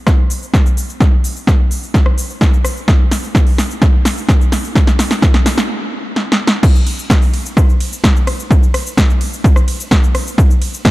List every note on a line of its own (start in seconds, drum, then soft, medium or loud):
0.07 kick loud
0.07 cross-stick medium
0.07 snare medium
0.07 shaker soft
0.30 open hi-hat loud
0.30 shaker medium
0.43 shaker soft
0.54 kick loud
0.54 snare medium
0.54 shaker soft
0.66 shaker soft
0.77 open hi-hat loud
0.77 shaker medium
0.90 shaker soft
1.00 kick loud
1.00 snare medium
1.00 shaker soft
1.24 open hi-hat loud
1.24 shaker medium
1.36 shaker soft
1.47 kick loud
1.47 snare medium
1.47 shaker soft
1.71 open hi-hat loud
1.71 shaker medium
1.83 shaker soft
1.94 kick loud
1.94 snare medium
1.94 shaker soft
2.06 cross-stick medium
2.18 open hi-hat loud
2.18 shaker medium
2.30 shaker soft
2.41 kick loud
2.41 snare medium
2.41 shaker soft
2.54 shaker soft
2.65 cross-stick medium
2.65 open hi-hat loud
2.65 shaker medium
2.77 shaker soft
2.88 kick loud
2.88 snare medium
2.88 shaker soft
3.11 snare medium
3.11 open hi-hat loud
3.11 shaker medium
3.24 shaker soft
3.35 kick loud
3.35 snare medium
3.35 shaker soft
3.47 open hi-hat medium
3.58 snare medium
3.58 open hi-hat loud
3.58 shaker medium
3.71 shaker soft
3.82 kick loud
3.82 snare medium
3.82 shaker soft
4.05 snare medium
4.05 open hi-hat loud
4.05 shaker medium
4.18 shaker soft
4.29 kick loud
4.29 snare medium
4.29 shaker soft
4.41 shaker soft
4.52 snare medium
4.52 open hi-hat loud
4.52 shaker medium
4.65 shaker soft
4.75 kick loud
4.75 snare medium
4.75 shaker soft
4.87 snare medium
4.87 shaker soft
4.99 snare medium
4.99 open hi-hat loud
4.99 shaker medium
5.11 snare medium
5.11 shaker soft
5.22 kick loud
5.22 snare medium
5.22 shaker soft
5.34 snare medium
5.46 snare loud
5.46 open hi-hat loud
5.46 shaker medium
5.58 snare medium
5.58 shaker soft
6.16 snare medium
6.32 snare medium
6.47 snare loud
6.63 kick loud
6.63 crash loud
6.63 shaker medium
6.76 shaker soft
6.87 open hi-hat loud
6.87 ride medium
6.99 shaker medium
7.10 kick loud
7.10 snare loud
7.10 shaker medium
7.22 open hi-hat medium
7.22 shaker soft
7.34 open hi-hat loud
7.34 ride medium
7.46 shaker medium
7.57 kick loud
7.57 cross-stick medium
7.57 shaker medium
7.69 shaker soft
7.80 open hi-hat loud
7.80 ride medium
7.93 shaker medium
8.04 kick loud
8.04 snare loud
8.04 shaker medium
8.16 shaker soft
8.27 cross-stick medium
8.27 open hi-hat loud
8.27 ride medium
8.40 shaker medium
8.51 kick loud
8.51 shaker medium
8.63 shaker soft
8.74 cross-stick medium
8.74 open hi-hat loud
8.74 ride medium
8.87 shaker medium
8.97 kick loud
8.97 snare loud
8.97 shaker medium
9.10 shaker soft
9.21 open hi-hat loud
9.21 ride medium
9.33 shaker medium
9.44 kick loud
9.44 shaker medium
9.56 cross-stick medium
9.56 shaker soft
9.68 open hi-hat loud
9.68 ride medium
9.80 shaker medium
9.91 kick loud
9.91 snare loud
9.91 shaker medium
10.04 shaker soft
10.15 cross-stick medium
10.15 open hi-hat loud
10.15 ride medium
10.27 shaker medium
10.38 kick loud
10.38 shaker medium
10.51 shaker soft
10.62 open hi-hat loud
10.62 ride medium
10.74 shaker medium
10.85 kick loud
10.85 snare loud
10.85 shaker medium